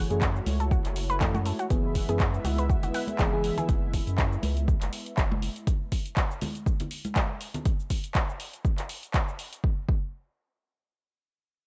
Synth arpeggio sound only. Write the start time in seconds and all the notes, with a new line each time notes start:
0.60 A4
0.71 F#4
1.10 B4
1.21 E4
1.34 F#4
1.46 A4
1.59 F#4
2.09 G#4
2.20 F#4
2.45 F#4
2.59 B4
2.70 F#4
2.83 F#4
2.94 F#5
3.58 G#4